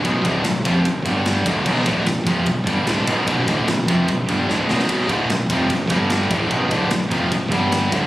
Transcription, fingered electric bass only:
X:1
M:4/4
L:1/8
Q:1/4=149
K:Glyd
V:1 name="Fingered electric bass" clef=bass
B,,,, D,,, B,,,, ^E,,, B,,,, G,,,2 D,,, | B,,,, D,,, B,,,, ^E,,, B,,,, G,,, D,,, B,,,, | B,,,, D,,, B,,,, ^E,,, B,,,, G,,, D,,, B,,,, | B,,,, D,,, B,,,, ^E,,, B,,,, G,,,2 D,,, |
B,,,, D,,, B,,,, ^E,,, B,,,, G,,,2 D,,, |]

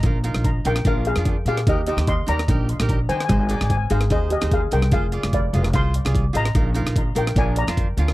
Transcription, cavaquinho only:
X:1
M:4/4
L:1/16
Q:"Swing 16ths" 1/4=147
K:Bbmix
V:1 name="Cavaquinho"
[EFB] z [EFB]2 z2 [EFB] z [DFB]2 z [DFA]2 z [DFG] z | [EGB] z [EGc]2 z2 [EGB] z [EGB]2 z [EGB]2 z [EGc] z | [EAc] z [EAd]2 z2 [EAc] z [EAc]2 z [EAc]2 z [EAc] z | [FAc] z [FAd]2 z2 [FAe] z [FAc]2 z [FAd]2 z [FAc] z |
[EFB] z [EFB]2 z2 [EFB] z [DFB]2 z [DFc]2 z [DFB] z |]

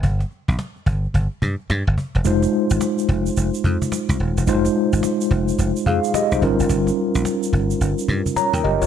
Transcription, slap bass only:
X:1
M:4/4
L:1/16
Q:"Swing 16ths" 1/4=108
K:Fm
V:1 name="Slap bass" clef=bass
G,,,2 z B,,, z2 G,,,2 G,,, z G,, z G,, G,,, z =E,,, | F,,,2 z A,,, z2 F,,,2 F,,, z F,, z2 C,, E,,, =E,,, | F,,,2 z A,,, z2 F,,,2 F,,, z F,, z2 C,, G,,, _G,,, | G,,,2 z B,,, z2 G,,,2 G,,, z G,, z2 E,, _G,,, =G,,, |]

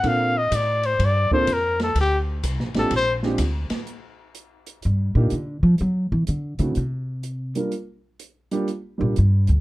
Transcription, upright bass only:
X:1
M:4/4
L:1/8
Q:"Swing" 1/4=125
K:Bb
V:1 name="Upright bass" clef=bass
B,,2 A,,2 G,, z F,,2 | D,,2 (3C,, B,,, A,,, B,,,2 D,, z | [K:Eb] z4 G,, B,, D, F, | ^F, _F, D, _D, C,3 z |
z4 z B,, G,, D,, |]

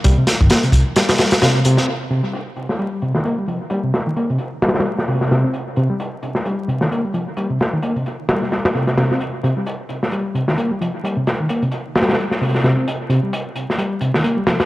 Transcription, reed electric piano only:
X:1
M:4/4
L:1/16
Q:"Swing 16ths" 1/4=131
K:Cm
V:1 name="Reed electric piano" clef=bass
G, C, z E, B, C, z2 G,4 C,2 C, C | z2 C, G, z4 G,2 C, E, B, G, F, z | G, C, z E, B, C, z2 G,4 C,2 C, C | z2 C, G, z4 G,2 C, E, B, G, F, z |
G, C, z E, B, C, z2 G,4 C,2 C, C | z2 C, G, z4 G,2 C, E, B, G, F, z | G, C, z E, B, C, z2 G,4 C,2 C, C | z2 C, G, z4 G,2 C, E, B, G, F, z |]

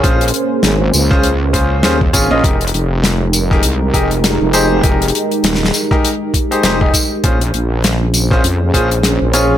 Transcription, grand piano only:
X:1
M:4/4
L:1/16
Q:"Swing 16ths" 1/4=100
K:Bbdor
V:1 name="Grand piano"
[DFAc] z6 [DFAc] z2 [DFAc]2 [DFAc] z [DFAd] [DFAe] | [EGAB] z6 [EGAB] z2 [EGAB] z3 [EGAc]2 | [EGAB] z6 [EGAB] z3 [EGAc] [EGAc] [EGAe] z2 | [DFAc] z6 [DFAc] z2 [DFAc] z3 [DFAd]2 |]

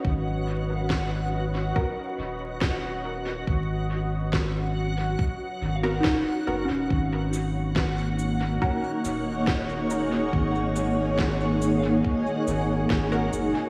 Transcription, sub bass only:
X:1
M:4/4
L:1/16
Q:1/4=70
K:G#dor
V:1 name="Sub bass" clef=bass
G,,,8 z2 D,,,6 | G,,,8 z2 G,,,2 D,,, z F,,, D,,, | G,,,8 z2 D,,,6 | G,,,8 z2 G,,,2 G,,,2 F,,, z |]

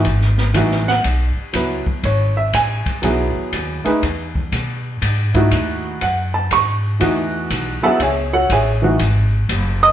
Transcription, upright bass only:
X:1
M:4/4
L:1/8
Q:"Swing" 1/4=121
K:C#m
V:1 name="Upright bass" clef=bass
G,,,2 A,,,2 B,,, z C,, z | G,,,2 A,,, z B,,, z D,, z | E,,2 B,,2 G,,2 D,,2 | F,,2 G,,2 E,,2 B,,, z |
C,,2 A,,,2 G,,,2 F,,,2 |]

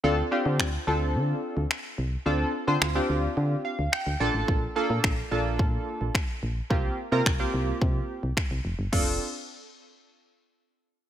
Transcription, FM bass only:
X:1
M:4/4
L:1/16
Q:1/4=108
K:Dm
V:1 name="FM bass" clef=bass
D,,2 z D, D,,2 D,,2 D,2 z D,, z2 C,,2 | D,,2 z D, D,,2 D,,2 D,2 z D,, z D,, B,,, A,,, | B,,,2 z B,, B,,,2 B,,,2 B,,2 z B,,, z2 B,,,2 | C,,2 z C, C,,2 C,,2 C,2 z C,, z C,, F,,, G,,, |
F,,,2 z12 z2 |]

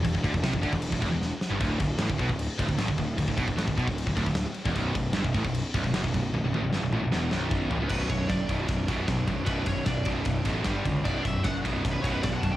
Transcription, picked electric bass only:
X:1
M:4/4
L:1/16
Q:1/4=152
K:Bm
V:1 name="Picked electric bass" clef=bass
E,,, E,,, D,, E,,, =C,, E,,, D,, E,,,2 E,,, E,,, E,,,2 z2 G,,, | D,,,2 D,,,2 A,,, D,,, B,,, D,,,2 z D,,, D,,, A,,, D,,, D,,,2 | D,,, D,,, B,,, D,,, A,,, D,,, B,,, D,,,2 D,,, D,,, D,,,2 z2 E,,, | B,,,,2 B,,,,2 G,,, B,,,, A,,, B,,,,2 z B,,,, B,,,, F,,, B,,,, B,,,,2 |
B,,,, B,,,, A,,, B,,,, G,,, B,,,, A,,, B,,,, E,,,2 B,,,,4 A,,, C,,, | B,,,,2 B,,,,2 F,,,2 B,,,,2 B,,,,2 B,,,,2 B,,,2 B,,,,2 | B,,,,2 B,,,,2 B,,,,2 B,,,,2 B,,,,2 A,,,2 G,,,2 C,,2 | B,,,,2 B,,,,2 F,,,2 B,,,,2 B,,,,2 B,,,,2 B,,,2 B,,,,2 |]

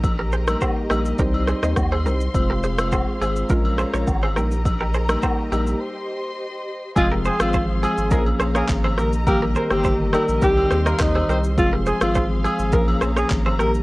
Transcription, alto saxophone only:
X:1
M:4/4
L:1/16
Q:1/4=104
K:Fm
V:1 name="Alto saxophone"
z16 | z16 | z16 | F z A F2 z A2 B z2 A z2 B z |
G z B G2 z B2 G3 z E3 z | F z A F2 z A2 B z2 A z2 B z |]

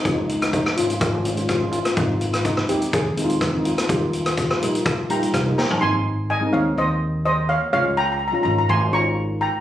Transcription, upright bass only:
X:1
M:4/4
L:1/8
Q:1/4=125
K:Ab
V:1 name="Upright bass" clef=bass
D,,3 A,,, A,,,4 | A,,,3 E,, E,,4 | E,,3 B,,, B,,,2 C,, B,,, | A,,,3 E,, E,,4 |
D,,3 A,,, A,,,4 |]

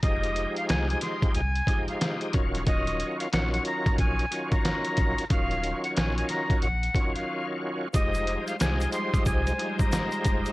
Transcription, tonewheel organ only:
X:1
M:4/4
L:1/8
Q:"Swing 16ths" 1/4=91
K:Ebdor
V:1 name="Tonewheel organ"
[F,A,E=G]4 z [F,A,EG]2 [E,_G,DF] | [E,G,DF]2 [E,G,DF]3 [E,G,DF]3 | [E,G,DF]4 z [E,G,DF]3 | [F,A,E=G]2 [F,A,EG]3 [F,A,EG]3 |]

